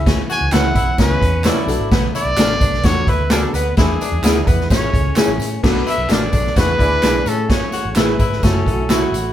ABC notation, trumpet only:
X:1
M:4/4
L:1/8
Q:1/4=129
K:Bdor
V:1 name="Trumpet"
z g f2 B2 d2 | z d3 c B A B | G3 B c3 z | z e d2 B3 A |
c2 B2 A2 F2 |]